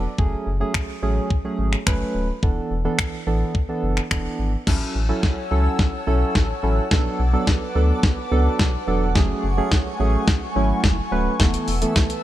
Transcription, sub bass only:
0.18 0.35 F#1 loud
0.47 0.63 F#1 loud
1.03 1.20 A1 medium
1.59 1.76 G#1 medium
1.87 2.04 F#1 medium
2.15 2.32 D1 medium
2.43 2.60 E1 loud
2.71 2.88 E1 loud
3.27 3.44 A1 medium
3.83 4.00 F#1 medium
4.11 4.28 E1 medium
4.39 4.56 G#1 medium
4.67 4.84 A1 loud
4.95 5.12 A1 loud
5.51 5.68 C#2 medium
6.07 6.24 B1 medium
6.35 6.52 A1 loud
6.63 6.80 A1 medium
6.91 7.08 B1 loud
7.19 7.36 B1 loud
7.75 7.92 D2 medium
8.31 8.48 C#2 medium
8.59 8.76 B1 loud
8.87 9.17 E1 medium
9.16 9.33 F#1 loud
9.44 9.61 F#1 loud
10.00 10.17 A1 medium
10.56 10.73 G#1 medium
10.84 11.01 F#1 loud
11.12 11.29 D1 loud
11.40 11.57 E1 loud
11.68 11.85 E1 loud

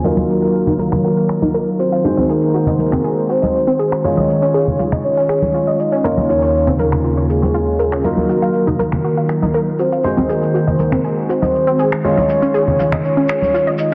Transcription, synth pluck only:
0.04 0.09 A#4 loud
0.29 0.34 F#4 medium
0.42 0.53 F5 medium
0.67 0.78 D#4 loud
0.79 0.84 A#4 loud
1.04 1.09 F#4 medium
1.17 1.28 F5 medium
1.42 1.53 D#4 loud
1.54 1.59 A#4 loud
1.79 1.84 F#4 medium
1.92 2.03 F5 medium
2.17 2.28 C4 loud
2.29 2.34 G#4 loud
2.54 2.59 F#4 medium
2.67 2.78 D#5 medium
2.92 3.03 C4 loud
3.04 3.09 G#4 loud
3.29 3.34 F#4 medium
3.42 3.53 D#5 medium
3.67 3.78 C4 loud
3.79 3.84 G#4 loud
4.04 4.09 F4 medium
4.17 4.28 D#5 medium
4.42 4.53 C#4 loud
4.54 4.59 G#4 loud
4.79 4.84 F4 medium
4.92 5.03 D#5 medium
5.17 5.28 C#4 loud
5.29 5.34 G#4 loud
5.54 5.59 F4 medium
5.67 5.78 D#5 medium
5.92 6.03 C#4 loud
6.04 6.09 A#4 loud
6.29 6.34 F4 medium
6.42 6.53 C#5 medium
6.67 6.78 C4 loud
6.79 6.84 A#4 loud
7.04 7.09 F4 medium
7.17 7.28 C#5 medium
7.42 7.50 C4 medium
7.54 7.59 F4 loud
7.79 7.87 A#4 medium
7.92 8.03 C#4 loud
8.04 8.09 A#4 loud
8.29 8.34 F#4 medium
8.42 8.53 F5 medium
8.67 8.72 D#4 loud
8.79 8.84 A#4 loud
9.04 9.09 F#4 medium
9.17 9.28 F5 medium
9.42 9.47 D#4 loud
9.54 9.59 A#4 loud
9.79 9.84 F#4 medium
9.92 10.04 F5 medium
10.17 10.22 C4 medium
10.29 10.34 G#4 loud
10.54 10.59 F#4 medium
10.67 10.78 D#5 medium
10.92 10.97 C4 loud
11.04 11.09 G#4 medium
11.29 11.34 F#4 medium
11.42 11.53 D#5 medium
11.67 11.72 C4 loud
11.79 11.84 G#4 loud
12.04 12.09 F4 medium
12.17 12.28 D#5 medium
12.42 12.47 C#4 loud
12.54 12.59 G#4 loud
12.79 12.84 F4 medium
12.92 13.03 D#5 medium
13.17 13.22 C#4 medium
13.29 13.34 G#4 loud
13.54 13.59 F4 medium
13.67 13.78 D#5 medium

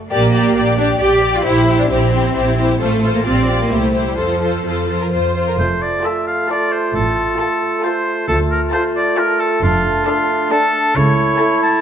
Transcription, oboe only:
5.59 5.83 C5 medium
5.82 6.06 D5 medium
6.05 6.26 E5 medium
6.27 6.49 F5 medium
6.50 6.73 D5 medium
6.72 6.94 C5 medium
6.94 7.38 A4 medium
7.40 7.83 A4 medium
7.84 8.27 C5 medium
8.28 8.38 A4 medium
8.51 8.61 A#4 medium
8.73 8.83 C5 medium
8.96 9.19 D5 medium
9.18 9.41 A#4 medium
9.40 9.62 A4 medium
9.63 10.06 F4 medium
10.06 10.50 F4 medium
10.51 10.97 A4 medium
10.96 11.62 C#5 medium
11.62 11.81 A5 medium

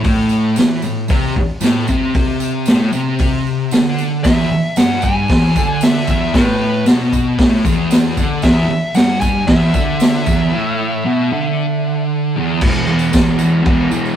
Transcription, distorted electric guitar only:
0.04 0.56 A2 loud
0.58 0.83 E3 loud
0.84 1.05 A2 medium
1.10 1.35 C3 loud
1.37 muted distorted electric guitar stroke medium
1.61 1.87 A2 loud
1.88 2.14 C3 loud
2.15 2.67 C3 loud
2.68 2.92 A2 loud
2.93 3.71 C3 loud
3.72 4.24 D3 loud
4.25 4.50 E2 loud
4.51 muted distorted electric guitar stroke medium
4.77 5.29 G2 loud
5.30 5.55 E2 loud
5.55 6.07 D3 loud
6.08 6.33 E2 loud
6.34 6.86 A2 loud
6.86 7.38 B2 loud
7.39 7.64 A2 loud
7.64 8.16 E2 loud
8.18 8.43 D3 loud
8.43 8.68 E2 loud
8.70 muted distorted electric guitar stroke medium
8.95 9.47 G2 loud
9.47 9.73 E2 loud
9.75 10.26 D3 loud
10.26 10.51 E2 loud
10.51 11.03 A2 loud
11.05 11.30 B2 loud
11.32 12.35 D3 loud
12.37 12.61 E2 loud
12.62 13.11 E2 medium
12.62 12.91 B2 medium
12.66 12.87 E3 loud
12.87 13.16 E3 medium
12.92 13.13 B2 medium
13.12 13.62 E2 loud
13.12 13.42 B2 loud
13.16 13.38 E3 loud
13.38 13.67 E3 medium
13.43 13.64 B2 medium
13.63 13.94 E2 medium
13.63 13.92 B2 medium
13.67 13.90 E3 medium
13.91 14.16 B2 medium
13.91 14.16 E3 loud
13.95 14.15 E2 medium

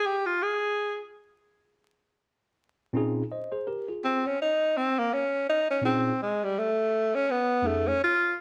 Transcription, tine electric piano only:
2.93 3.21 A#2 medium
2.93 3.21 C4 medium
2.93 3.22 C#4 medium
2.93 3.22 D#4 medium
2.93 3.23 F4 medium
2.93 3.23 G#4 medium
3.32 3.51 C5 medium
3.32 3.51 D#5 medium
3.52 3.67 G#4 medium
3.52 3.66 C5 medium
3.67 3.88 G4 medium
3.67 3.87 A#4 medium
3.89 4.23 F4 soft
3.89 4.23 G#4 medium
5.81 6.10 A#2 medium
5.81 6.10 C4 medium
5.81 6.11 C#4 medium
5.81 6.11 D#4 medium
5.81 6.11 F4 medium
5.81 6.12 G#4 medium
7.62 7.91 F2 medium
7.62 7.91 A3 medium
7.62 7.91 C#4 medium
7.62 7.92 D#4 medium
7.62 7.92 G#4 medium

